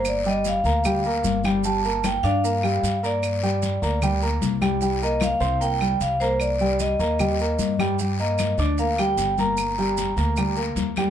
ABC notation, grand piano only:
X:1
M:4/4
L:1/8
Q:1/4=151
K:Gm
V:1 name="Grand piano"
[B,Bb] [G,Gg]2 [B,Bb] [G,Gg] [B,Bb]2 [G,Gg] | [G,Gg] [B,Bb]2 [Ddd'] [B,Bb] [G,Gg]2 [B,Bb]- | [B,Bb] [G,Gg]2 [B,Bb] [G,Gg] [B,Bb]2 [G,Gg] | [G,Gg] [B,Bb]2 [Ccc'] [B,Bb] [G,Gg]2 [B,Bb]- |
[B,Bb] [G,Gg]2 [B,Bb] [G,Gg] [B,Bb]2 [G,Gg] | [G,Gg] [B,Bb]2 [Ddd'] [B,Bb] [G,Gg]2 [B,Bb]- | [B,Bb] [G,Gg]2 [B,Bb] [G,Gg] [B,Bb]2 [G,Gg] |]